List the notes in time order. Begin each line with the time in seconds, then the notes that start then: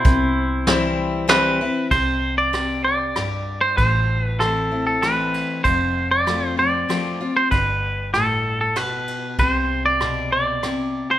Already playing: E4 C5
0.05 C2 C3, kick, closed hi-hat
0.67 E3 G3 C4 E4, snare, closed hi-hat
1.28 E3 G3 C4 E4 B4, snare, closed hi-hat
1.61 C4 E4
1.91 C2 C3 C5, kick, ride
2.38 D5
2.53 C3, cross-stick, ride
2.85 D5
3.16 G2, cross-stick, ride
3.61 C5
3.77 A1 A2 C5, kick, ride
4.23 B4
4.40 E3 A3 C4 E4 A4, cross-stick, ride
4.72 C4 E4
4.87 A4
5.02 E3 A3 C4 E4 B4, cross-stick, ride
5.34 ride
5.64 F1 F2 C5, kick, ride
6.11 D5
6.26 F3 A3 C4 F4, cross-stick, ride
6.57 C4 F4 D5
6.89 F3 A3 C4 F4, cross-stick, ride
7.21 C4 F4
7.37 C5
7.51 G1 G2 B4, kick, ride
8.14 A2 A4, cross-stick, ride
8.61 A4
8.76 B2 B4, cross-stick, ride
9.08 ride
9.38 C2 C3 C5, kick, ride
9.86 D5
10.01 B2, cross-stick, ride
10.32 D5
10.63 C3, cross-stick, ride
11.11 C5